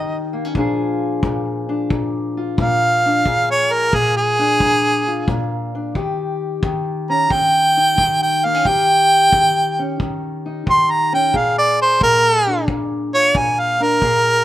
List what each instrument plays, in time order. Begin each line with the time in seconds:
Already playing: steel-string acoustic guitar D#3 C#4 D#4 G4, harmonica D#5
0.33 steel-string acoustic guitar A#3
0.45 steel-string acoustic guitar C#4
0.55 steel-string acoustic guitar A#2 F3 D4 F4 G#4, kick
1.23 steel-string acoustic guitar A#2, kick
1.69 steel-string acoustic guitar D4
1.90 steel-string acoustic guitar A#2, kick
2.37 steel-string acoustic guitar F4
2.58 steel-string acoustic guitar A#2, harmonica F5, kick
3.06 steel-string acoustic guitar D4
3.26 steel-string acoustic guitar A#2 G#4, kick
3.51 harmonica C#5
3.73 harmonica A#4
3.93 steel-string acoustic guitar A#2, harmonica G#4, kick
4.17 harmonica G#4
4.39 steel-string acoustic guitar D4
4.60 steel-string acoustic guitar A#2, kick
5.07 steel-string acoustic guitar F4
5.28 steel-string acoustic guitar A#2, kick
5.75 steel-string acoustic guitar D4
5.95 steel-string acoustic guitar D#3 G4, kick
6.63 steel-string acoustic guitar D#3, kick
7.09 steel-string acoustic guitar C#4, harmonica A#5
7.30 steel-string acoustic guitar D#3, harmonica G5, kick
7.77 steel-string acoustic guitar D#4
7.98 steel-string acoustic guitar D#3, kick
8.23 harmonica G5
8.44 steel-string acoustic guitar A#3, harmonica F5
8.54 steel-string acoustic guitar C#4
8.65 steel-string acoustic guitar D#3 G4, harmonica G5, kick
9.32 steel-string acoustic guitar D#3, kick
9.79 steel-string acoustic guitar C#4
10.00 steel-string acoustic guitar D#3, kick
10.46 steel-string acoustic guitar D#4
10.66 steel-string acoustic guitar D#3, harmonica C6, kick
10.91 harmonica A#5
11.13 steel-string acoustic guitar C#4, harmonica G5
11.33 steel-string acoustic guitar A#2 G#4, harmonica F5, kick
11.58 harmonica D5
11.82 harmonica C5
12.01 steel-string acoustic guitar A#2, harmonica A#4, kick
12.47 steel-string acoustic guitar D4
12.68 steel-string acoustic guitar A#2, kick
13.14 steel-string acoustic guitar F4, harmonica C#5
13.35 steel-string acoustic guitar A#2, harmonica G#5, kick
13.60 harmonica F5
13.80 steel-string acoustic guitar D4, harmonica A#4
14.02 steel-string acoustic guitar A#2 G#4, kick